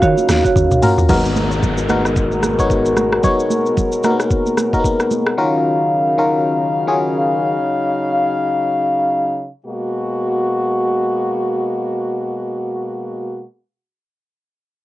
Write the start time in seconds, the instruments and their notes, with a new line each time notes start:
Already playing: french horn section C#3 F#3 D#4 F5, fm electric piano C#4 F4 F#4 A#4
0.02 log drum bass D#3, marimba F#4 C#5 F5, kick, shaker
0.18 high conga, shaker
0.29 log drum bass D#2, cross-stick, snare, high conga, shaker
0.44 marimba F#4 C#5 F5, kick, shaker
0.56 log drum bass D#2, kick, high tom, shaker
0.71 log drum bass C#2, mid tom, shaker
0.82 fm electric piano C#4 F4 F#4 A#4, mid tom, open hi-hat, high conga, shaker
0.98 log drum bass D#2, floor tom, shaker
1.09 analog synth bass G#1, french horn section B2 G#3 F#4 A#4, fm electric piano B3 D#4 F#4 A#4, kick, crash, downlifter, low conga, shaker
1.25 shaker
1.36 high conga, shaker
1.52 shaker
1.63 kick, low conga, shaker
1.78 shaker
1.89 fm electric piano B3 D#4 F#4 A#4, cross-stick, high conga, shaker
2.05 cross-stick, shaker
2.16 kick, shaker
2.32 high conga, shaker
2.43 cross-stick, high conga, shaker
2.59 fm electric piano B3 D#4 F#4 C#5, kick, shaker
2.70 kick, shaker
2.86 shaker
2.97 cross-stick, high conga, shaker
3.12 cross-stick
3.23 fm electric piano B3 D#4 F#4 C#5, kick, low conga, shaker
3.40 shaker
3.50 high conga, shaker
3.66 shaker
3.77 kick, low conga, shaker
3.92 shaker
4.03 fm electric piano A#3 D#4 F#4 A#4, cross-stick, high conga, shaker
4.10 fm electric piano B3
4.20 cross-stick, shaker
4.31 kick, shaker
4.46 high conga, shaker
4.57 cross-stick, high conga, shaker
4.73 fm electric piano A#3 D#4 F#4 A#4, kick, shaker
4.79 fm electric piano B3
4.84 kick, shaker
5.00 cross-stick, shaker
5.11 high conga, shaker
5.26 cross-stick
5.37 french horn section C#3 F#3 D#4 F5, fm electric piano D#3 C#4 F4 F#4 A#4
6.18 fm electric piano D#3 C#4 F4 F#4 A#4
6.87 fm electric piano D#3 C#4 F4 F#4 G#4
9.66 french horn section B2 G#3 A#3 F#4